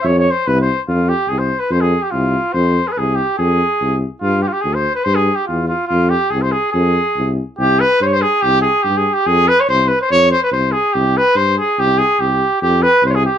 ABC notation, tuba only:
X:1
M:2/4
L:1/8
Q:1/4=143
K:none
V:1 name="Tuba" clef=bass
F,,2 C,,2 | F,,2 C,,2 | F,,2 C,,2 | F,,2 C,,2 |
F,,2 C,,2 | G,,2 D,,2 | G,,2 E,,2 | F,,2 C,,2 |
F,,2 C,,2 | C,,2 G,,2 | C,,2 G,,2 | F,,2 C,,2 |
F,,2 C,,2 | C,,2 G,,2 | C,,2 C,,2 | F,,2 C,,2 |]